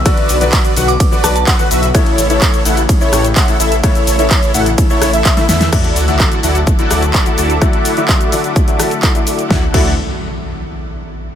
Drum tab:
CC |----------------|----------------|----------------|x---------------|
RD |x---x---x---x---|x---x---x---x---|x---x---x---x---|----------------|
HH |xxoxxxoxx-oxxxox|xxoxxxoxx-oxxxox|xxoxxxoxx-oxxxox|xxoxxxoxxxoxxxox|
SH |x-xxxxxxxxxxxxxx|x-xxxxxxxxxxxxxx|xxxxxxxxxxxxxxxx|x-xxxxxxxxxxxxxx|
CP |----x-------x---|----x-------x---|----x-------x---|----x-------x---|
SD |r---------r-----|r---------r-----|r---------r--ooo|r---------r-----|
BD |o---o---o---o---|o---o---o---o---|o---o---o---o---|o---o---o---o---|

CC |----------------|--x-------------|
RD |----------------|----------------|
HH |xxoxxxoxxxoxxxox|----------------|
SH |x-xxxxxxxxxxxxxx|----------------|
CP |----x-------x---|----------------|
SD |r---------r-----|o---------------|
BD |o---o---o---o---|o-o-------------|